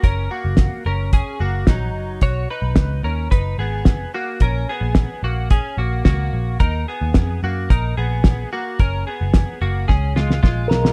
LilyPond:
<<
  \new Staff \with { instrumentName = "Glockenspiel" } { \time 4/4 \key fis \major \tempo 4 = 110 r1 | r1 | r1 | r1 |
r2. r8 ais''8 | }
  \new Staff \with { instrumentName = "Tine electric piano" } { \time 4/4 \key fis \major r1 | r1 | r1 | r1 |
r2. r8 ais'8 | }
  \new Staff \with { instrumentName = "Clean electric guitar" } { \time 4/4 \key fis \major <cis' ais'>8 <ais fis'>4 <cis' ais'>8 <cis' gis'>8 <ais fis'>8 <fis dis'>4 | <fis' cis''>8 <dis' b'>4 <cis' ais'>8 <dis' b'>8 <b gis'>4 <ais fis'>8 | <cis' ais'>8 <b gis'>4 <ais fis'>8 <cis' gis'>8 <ais fis'>8 <ais fis'>4 | <dis' ais'>8 <b gis'>4 <ais fis'>8 <dis' ais'>8 <b gis'>4 <ais fis'>8 |
<cis' ais'>8 <b gis'>4 <ais fis'>8 <cis' gis'>8 <gis eis'>8 <gis eis'>4 | }
  \new Staff \with { instrumentName = "Picked electric bass" } { \clef bass \time 4/4 \key fis \major fis,,8 r16 fis,,8 r16 fis,,8. r16 fis,,8 ais,,8 fis,,8 | b,,8 r16 b,,16 cis,8 dis,8 fis,,8 gis,,4 r8 | ais,,8 r16 ais,,8 r16 ais,,8. r16 ais,,8 cis,8 ais,,8 | dis,8 r16 dis,16 eis,8 fis,8 ais,,8 ais,,4 r8 |
fis,,8 r16 fis,,8 r16 fis,,8 cis,8 cis,8 ais,,8 b,,8 | }
  \new DrumStaff \with { instrumentName = "Drums" } \drummode { \time 4/4 <hh bd>4 <hh bd sn>4 <hh bd>4 <hh bd sn>4 | <hh bd>4 <hh bd sn>4 <hh bd>4 <hh bd sn>4 | <hh bd>4 <hh bd sn>4 <hh bd>4 <hh bd sn>4 | <hh bd>4 <hh bd sn>4 <hh bd>4 <hh bd sn>4 |
<hh bd>4 <hh bd sn>4 <bd sn>8 sn16 sn16 <bd sn>8 sn16 sn16 | }
>>